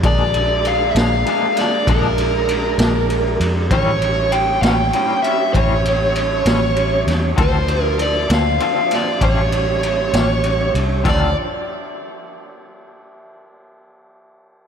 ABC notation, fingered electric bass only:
X:1
M:12/8
L:1/8
Q:3/8=65
K:Aphr
V:1 name="Fingered electric bass" clef=bass
B,,,3 B,,, z2 B,,,3 B,,,2 F,, | A,,,3 A,,, z2 A,,,3 A,,,2 E,, | D,,3 D,, z2 A,,,3 A,,,2 ^B,,, | D,, z8 z3 |]